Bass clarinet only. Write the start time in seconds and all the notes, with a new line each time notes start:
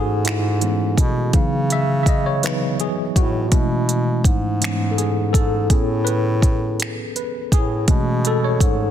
Already playing: G#2
0.98 B2
1.34 C#3
3.17 A2
3.53 B2
4.25 G#2
5.35 G#2
5.71 A2
7.53 A2
7.89 B2
8.61 G#2